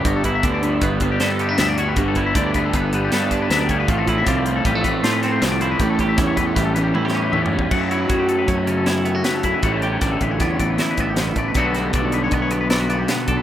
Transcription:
<<
  \new Staff \with { instrumentName = "Clean electric guitar" } { \time 5/4 \key g \lydian \tempo 4 = 156 fis'16 a'16 b'16 e''16 d''16 d''16 b'16 a'16 b'16 a'16 b'16 g'16 b'16 a'16 g'16 b'16 e''16 d''16 cis''16 b'16 | fis'16 a'16 b'16 e''16 d''16 d''16 b'16 a'16 b'16 a'16 b'16 g'16 b'16 a'16 g'16 b'16 e''16 d''16 cis''16 b'16 | f'16 a'16 b'16 e''16 d''16 d''16 b'16 a'16 b'16 a'16 b'16 a'16 c''16 b'16 a'16 c''16 e''16 d''16 c''16 b'16 | g'16 a'16 b'16 e''16 cis''16 cis''16 b'16 a'16 b'16 a'16 b'16 g'16 b'16 a'16 g'16 b'16 e''16 d''16 cis''16 b'16 |
fis''16 e''16 cis''16 b'16 cis''16 g'16 a'16 b'16 cis''16 b'16 cis''16 a'16 cis''16 a'16 cis''16 fis'16 b'16 a'16 e''16 b'16 | fis''16 e''16 d''16 cis''16 d''16 a'16 b'16 cis''16 d''16 cis''16 d''16 b'16 d''16 b'16 d''16 g'16 b'16 a'16 d''16 b'16 | fis''16 e''16 d''16 cis''16 d''16 a'16 b'16 cis''16 d''16 cis''16 d''16 b'16 d''16 b'16 d''16 g'16 b'16 a'16 d''16 b'16 | }
  \new Staff \with { instrumentName = "Overdriven electric guitar" } { \time 5/4 \key g \lydian <g, d g b d'>8 <g b d'>8 <g, d g b d'>8 <g b d'>4 <g b d'>8 <d g b d'>4 <g, d g b d'>8 <g b d'>8 | <g, d g b d'>8 <g b d'>8 <g, d g b d'>8 <g b d'>4 <g b d'>8 <d g b d'>4 <g, d g b d'>8 <g b d'>8 | <a, f a c' f'>8 <a c' f'>8 <a, f a c' f'>8 <a c' f'>4 <a c' f'>8 <f a c' f'>4 <a, f a c' f'>8 <a c' f'>8 | <a, e g cis' e'>8 <g cis' e'>8 <a, e g cis' e'>8 <g cis' e'>4 <g cis' e'>8 <e g cis' e'>4 <a, e g cis' e'>8 <g cis' e'>8 |
<fis a cis' fis'>1~ <fis a cis' fis'>4 | <a, e g cis' e'>1~ <a, e g cis' e'>4 | <b, g b d'>1~ <b, g b d'>4 | }
  \new Staff \with { instrumentName = "Clean electric guitar" } { \time 5/4 \key g \lydian << { g8 e'4. b4 a'8 b16 d'8. fis'8 | r8 e'4. b4 a'8 d'4. | r8 e'4. g16 a8. f'8 c'4 e'8~ | e'8 g'4. g4 e'16 g'16 cis'4. |
r8 e'4. cis'4 e'8 b16 cis'8. e'8~ | e'8 g'4. b4 e'8 b4. | <d a b fis'>8 fis'4. b4 e'16 fis'16 b4 a'8 | } \\ { g,4 d4. g,4. g,4 | g,4 d4. g,4. fis,8 g,8 | a,4 f4. a,4. a,4 | a,4 e4. e,4. a,8 g,8 |
fis,4 fis4. cis4. fis,4 | a,4 d4. e,4. g,8 a,8 | b,4 d4. b,4. b,4 | } >> }
  \new Staff \with { instrumentName = "Fingered electric bass" } { \clef bass \time 5/4 \key g \lydian g,,4 d,4 g,,4 g,4 d,4 | g,,4 d,4 g,,4 g,4 d,4 | a,,4 c,4 a,,4 a,4 c,4 | a,,4 e,4 a,,4 a,4 e,4 |
fis,4 fis,4 fis,2 r8 fis,16 r16 | a,,4 a,,8 a,,8 e,8 a,,8 r8 a,,4 a,,8 | b,,4 b,,4 b,,2 r8 b,,16 r16 | }
  \new DrumStaff \with { instrumentName = "Drums" } \drummode { \time 5/4 <hh bd>8 <hh bd>8 <hh bd>8 hh8 <hh bd>8 <hh bd>8 <hh sn>8 hh8 <hh sn>8 hh8 | <hh bd>8 <hh bd>8 <hh bd>8 <hh bd>8 <hh bd>8 hh8 <hh sn>8 <hh bd>8 <hh sn>8 <hh bd>8 | <hh bd>8 <hh bd>8 <hh bd sn>8 hh8 <hh bd>8 <hh bd>8 <hh sn>8 <hh sn>8 <hh sn>8 hh8 | <hh bd>8 <hh bd>8 <hh bd sn>8 <hh bd>8 <hh bd sn>8 hh8 \tuplet 3/2 { tommh8 sn8 r8 toml8 tomfh8 bd8 } |
<cymc bd>8 hh8 <hh bd>8 hh8 <hh bd>8 hh8 <hh sn>8 hh8 <hh sn>8 <hh bd>8 | <hh bd>8 hh8 <hh bd sn>8 <hh bd>8 <hh bd sn>8 <hh bd>8 <hh sn>8 <hh bd>8 <hh sn>8 <hh bd>8 | <hh bd>8 <hh sn>8 <hh bd>8 hh8 <hh bd>8 hh8 <hh sn>8 hh8 <hh sn>8 <hh bd>8 | }
>>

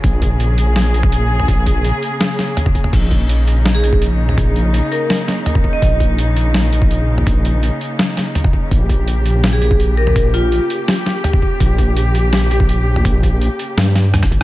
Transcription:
<<
  \new Staff \with { instrumentName = "Vibraphone" } { \time 4/4 \key bes \dorian \tempo 4 = 166 r1 | r1 | r2 r16 aes'16 aes'16 r4 r16 | r4. bes'8 r4. r16 ees''16~ |
ees''8 r2. r8 | r1 | r2 r16 aes'16 aes'16 r8. bes'16 bes'16 | r8 f'8. r2 r8. |
r1 | r1 | }
  \new Staff \with { instrumentName = "Cello section" } { \time 4/4 \key bes \dorian << { aes'1~ | aes'1 | ees'1~ | ees'1~ |
ees'1~ | ees'1 | g'1~ | g'1~ |
g'1~ | g'1 | } \\ { <des bes>1~ | <des bes>1~ | <des bes>1~ | <des bes>1~ |
<des bes>1~ | <des bes>1~ | <des bes>1~ | <des bes>1~ |
<des bes>1~ | <des bes>1 | } >> }
  \new Staff \with { instrumentName = "Detuned saw bass" } { \clef bass \time 4/4 \key bes \dorian bes,,2~ bes,,8 bes,,4. | bes,,8. bes,,8 r2 r8. | bes,,2~ bes,,8 bes,,4. | bes,,8. bes,,8 r2 r8. |
bes,,2~ bes,,8 bes,,4. | bes,,8. bes,,8 r2 r8. | bes,,2~ bes,,8 bes,,4. | bes,,8. bes,,8 r2 r8. |
bes,,2~ bes,,8 bes,,4. | bes,,8. bes,,8 r8. g,4~ g,16 r16 aes,,8 | }
  \new DrumStaff \with { instrumentName = "Drums" } \drummode { \time 4/4 <hh bd>8 <hh bd>8 hh8 hh8 <hh sn>32 hh16. hh16 bd16 hh8. toml16 | <hh bd>8 <hh bd>8 hh8 hh8 <hh sn>32 hh16. <hh sn>8 <hh toml>16 <bd toml>16 <hh bd>16 toml16 | <cymc hh bd>8 <hh bd>8 hh8 hh8 <hh sn>32 hh16. hh16 bd16 hh8. toml16 | <hh bd>8 hh8 hh8 hh8 <hh sn>32 hh16. <hh sn>8 <hh toml>16 <bd toml>16 bd8 |
<hh bd>8 <hh bd>8 hh8 hh8 <hh sn>32 hh16. hh16 bd16 hh8. toml16 | <hh bd>8 hh8 hh8 hh8 <hh sn>32 hh16. <hh sn>8 <hh toml>16 <bd toml>16 bd8 | <hh bd>8 <hh bd>8 hh8 hh8 <hh sn>32 hh16. hh16 bd16 hh8. toml16 | <hh bd>8 hh8 hh8 hh8 <hh sn>32 hh16. <hh sn>8 <hh toml>16 <bd toml>16 bd8 |
<hh bd>8 <hh bd>8 hh8 hh8 <hh sn>32 hh16. hh16 bd16 hh8. toml16 | <hh bd>8 <hh bd>8 hh8 hh8 <hh sn>32 hh16. <hh sn>8 <hh ss toml>16 <bd ss toml>16 <hh bd>8 | }
>>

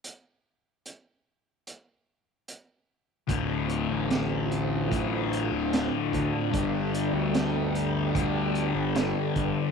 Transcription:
<<
  \new Staff \with { instrumentName = "String machine" } { \time 4/4 \key d \dorian \tempo 4 = 74 << { r1 | <d' a'>1~ | <d' a'>1 | } \\ { r1 | <c' f'>1 | <b g'>1 | } >> }
  \new Staff \with { instrumentName = "Distorted electric guitar" } { \clef bass \time 4/4 \key d \dorian r1 | <d, a, d>2 <d, a, d>2 | <g, d g>2 <g, d g>2 | }
  \new Staff \with { instrumentName = "Picked electric bass" } { \clef bass \time 4/4 \key d \dorian r1 | d,,8. a,,2 d,,8 r16 d,16 r16 | g,,8. d,2 g,,8 r16 g,,16 r16 | }
  \new DrumStaff \with { instrumentName = "Drums" } \drummode { \time 4/4 hh4 hh4 hh4 hh4 | <hh bd>8 hh8 <hh sn>8 hh8 <hh bd>8 hh8 <hh sn>8 <hh bd>8 | <hh bd>8 hh8 <hh sn>8 hh8 <hh bd>8 hh8 <hh sn>8 <hh bd>8 | }
>>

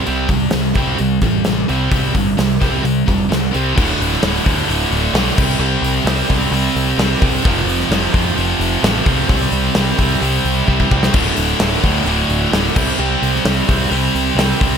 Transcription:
<<
  \new Staff \with { instrumentName = "Distorted electric guitar" } { \clef bass \time 4/4 \key c \lydian \tempo 4 = 130 <c g c'>8 <c g>8 <c g>8 <c g c'>8 <c g>8 <c g>8 <c g>8 <c g c'>8 | <c g c'>8 <c g>8 <c g>8 <c g c'>8 <c g>8 <c g>8 <c g>8 <c g c'>8 | <d, a, d>4 <d, a, d>8 <d, a, d>8 <d, a, d>4 <d, a, d>8 <c g c'>8 | <c g c'>4 <c g c'>8 <c g c'>8 <c g c'>4 <c g c'>8 <c g c'>8 |
<f, c f>4 <f, c f>8 <c f>8 <f, c f>4 <f, c f>8 <f, c f>8 | <c g c'>4 <c g c'>8 <c g c'>8 <c g c'>4 <c g c'>8 <c g c'>8 | <d, a, d>4 <d, a, d>8 <d, a, d>8 <d, a, d>4 <d, a, d>8 <c g c'>8 | <c g c'>4 <c g c'>8 <c g c'>8 <c g c'>4 <c g c'>8 <c g c'>8 | }
  \new Staff \with { instrumentName = "Distorted electric guitar" } { \clef bass \time 4/4 \key c \lydian <c g c'>8 <c g>8 <c g>8 <c g c'>8 <c g>8 <c g>8 <c g>8 <c g c'>8 | <c g c'>8 <c g>8 <c g>8 <c g c'>8 <c g>8 <c g>8 <c g>8 <c g c'>8 | <d, a, d>4 <d, a, d>8 <d, a, d>8 <d, a, d>4 <d, a, d>8 <c g c'>8 | <c g c'>4 <c g c'>8 <c g c'>8 <c g c'>4 <c g c'>8 <c g c'>8 |
<f, c f>4 <f, c f>8 <f, c f>8 <f, c f>4 <f, c f>8 <f, c f>8 | <c g c'>4 <c g c'>8 <c g c'>8 <c g c'>4 <c g c'>8 <c g c'>8 | <d, a, d>4 <d, a, d>8 <d, a, d>8 <d, a, d>4 <d, a, d>8 <c g c'>8 | <c g c'>4 <c g c'>8 <c g c'>8 <c g c'>4 <c g c'>8 <c g c'>8 | }
  \new Staff \with { instrumentName = "Picked electric bass" } { \clef bass \time 4/4 \key c \lydian c,8 c,8 c,8 c,8 c,8 a,,8 a,,8 c,8 | c,8 g,,8 c,8 c,8 c,8 e,,8 c,8 c,8 | d,,8 d,,8 d,,8 d,8 d,,8 d,,8 b,,8 c,8 | c,8 c,8 c,8 c,8 c,8 c,8 c,8 c,8 |
f,,8 f,,8 f,,8 f,8 f,,8 f,,8 a,,8 c,8 | c,8 c,8 c,8 c,8 c,8 c,8 c,8 c,8 | d,,8 d,,8 d,,8 d,8 d,,8 d,,8 d,,8 c,8 | c,8 c,8 c,8 c,8 c,8 c,8 c,8 c,8 | }
  \new DrumStaff \with { instrumentName = "Drums" } \drummode { \time 4/4 hho8 <hho bd>8 <hho sn>8 <hho bd>8 hho8 <hho bd>8 <hho sn>8 hho8 | <hho bd>8 <hho bd>8 <hho sn>8 <hho bd sn>8 hho8 <hho bd>8 <hho sn>8 hho8 | <cymc bd>8 hho16 sn16 <hho sn>8 <hho bd>8 hho8 hho8 <hho sn>8 <cymc bd>8 | r8 hho8 <hho sn>8 <hho bd>8 hho8 hho8 <hho sn>8 <hho bd>8 |
<hho bd>8 hho16 sn16 <hho sn>8 <hho bd>8 hho8 hho8 <hho sn>8 <hho bd>8 | <hho bd>8 hho8 <hho sn>8 <hho bd>8 hho8 hho8 bd16 bd16 bd16 sn16 | <cymc bd>8 hho8 <hho sn>8 <hho bd>8 hho8 hho8 <hho sn>8 <cymc bd>8 | r8 hho16 sn16 <hho sn>8 <hho bd>8 hho8 hho8 <hho sn>8 <hho bd>8 | }
>>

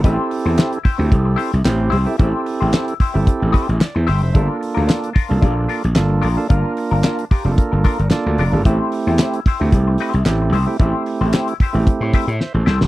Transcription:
<<
  \new Staff \with { instrumentName = "Clean electric guitar" } { \time 4/4 \key a \phrygian \tempo 4 = 111 <e' g' c''>8 r16 <e' g' c''>16 <e' g' c''>8 <e' g' c''>16 r8. <e' g' c''>8 r8 <e' g' c''>8 | <e' g' c''>8 r16 <e' g' c''>16 <e' g' c''>8 <e' g' c''>16 r8. <e' g' c''>8 r8 <e' g' c''>8 | <d' f' bes'>8 r16 <d' f' bes'>16 <d' f' bes'>8 <d' f' bes'>16 r16 <d' f' bes'>8 <d' f' bes'>16 r8. <d' f' bes'>8 | <d' f' bes'>8 r16 <d' f' bes'>16 <d' f' bes'>8 <d' f' bes'>16 r8. <d' f' bes'>8 r8 <d' f' bes'>8 |
<e' g' c''>8 r16 <e' g' c''>16 <e' g' c''>8 <e' g' c''>16 r8. <e' g' c''>8 r8 <e' g' c''>8 | <e' g' c''>8 r16 <e' g' c''>16 <e' g' c''>8 <e' g' c''>16 r8. <e' g' c''>8 r8 <e' g' c''>8 | }
  \new Staff \with { instrumentName = "Tonewheel organ" } { \time 4/4 \key a \phrygian << { r1 | r2. d''16 <c'' e''>16 <e'' g''>16 <c'' e''>16~ | <c'' e''>16 r2. r8. | r4. g'8 bes'4 d''4 |
r1 | r2. <c'' e''>16 <a' c''>16 a'16 <e' g'>16 | } \\ { <c' e' g' a'>4. r16 <c' e' g' a'>4 r16 <c' e' g' c''>8 r16 <c' e' g' a'>16 | <c' e' g' a'>4. r16 <c' e' g' a'>4 r4 r16 | <a bes d' f' a'>4. r16 <bes d' f' a'>4 r16 <bes d' f' a'>8 r16 <bes d' f' a'>16 | <bes d' f' bes'>4. r16 <bes d' f' g' a'>4 r16 <bes d' f' a'>8 r16 <bes d' f' a'>16 |
<a c' e' g'>4. r16 <a c' e' g'>4 r16 <a c' e' g'>8 r16 <a c' e' g'>16 | <a c' e' g'>4. r16 <a c' e' g'>4 r4 r16 | } >> }
  \new Staff \with { instrumentName = "Slap bass" } { \clef bass \time 4/4 \key a \phrygian a,,16 r8 e,16 r8. d,16 c,8 r16 c,16 a,,8 c,16 r16 | a,,16 r8 a,,16 r8. g,,16 r16 a,,16 r16 a,,16 r16 e,16 g,,16 f,,16 | g,,16 r8 d,16 r8. c,16 bes,,8 r16 bes,,16 g,,8 bes,,16 r16 | g,,16 r8 g,,16 r8. f,,16 r16 g,,16 r16 g,,16 r16 d,16 f,,16 g,,16 |
a,,16 r8 e,16 r8. d,16 c,8 r16 c,16 a,,8 c,16 r16 | a,,16 r8 a,,16 r8. a,,16 r16 a,16 r16 a,16 r16 a,,16 c,16 f,,16 | }
  \new DrumStaff \with { instrumentName = "Drums" } \drummode { \time 4/4 <hh bd>8 hho8 <hc hh sn>16 hh16 <hho bd>8 <hh bd>8 hho16 hh16 <hc hh sn>8 hho8 | <hh bd>8 hho8 <hc hh sn>16 hh16 <hho bd>8 <hh bd>8 <hho bd>16 hh16 <hc hh sn>8 hho8 | <hh bd>8 hho8 <hc hh sn>16 hh16 <hho bd>8 <hh bd>8 hho16 hh16 <hc hh sn>8 hho8 | <hh bd>8 hho8 <hc hh sn>16 hh16 <hho bd>8 <hh bd>8 <hho bd>16 hh16 <hc hh sn>8 hho8 |
<hh bd>8 hho8 <hc hh sn>16 hh16 <hho bd>8 <hh bd>8 hho16 hh16 <hc hh sn>8 hho8 | <hh bd>8 hho8 <hc hh sn>16 hh16 <hho bd>8 <hh bd>8 <hho bd>16 hh16 sn8 sn16 sn16 | }
>>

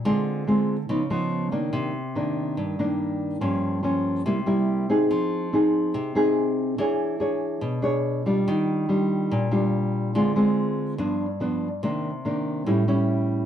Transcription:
\new Staff \with { instrumentName = "Nylon-string guitar" } { \time 4/4 \key c \minor \tempo 4 = 143 << { <aes c' f'>4 <aes c' f'>8 r8 <f ces' ees'>8 <f ces' ees'>4 <ees bes d'>8~ | <ees bes d'>8 r8 <ees bes d'>4. <ees bes d'>4. | <f bes des'>4 <f bes des'>4 <g bes e'>8 <g bes e'>4 <c' ees' aes'>8~ | <c' ees' aes'>4 <c' ees' aes'>4. <c' ees' aes'>4. |
<d' gis' cis''>4 <d' gis' cis''>4. <d' gis' cis''>4 <g d' f'>8~ | <g d' f'>4 <g d' f'>4. <g d' f'>4. | <aes c' f'>8 <aes c' f'>4. <f b d'>8 r8 <f b d'>8 r8 | <ees bes d'>8 r8 <ees bes d'>4 <g cis' e'>8 <g cis' e'>4. | } \\ { d2 des2 | c2 g,2 | g,2 c2 | f2 c2 |
e2 b,2 | ees2 bes,2 | d2 g,2 | c2 a,2 | } >> }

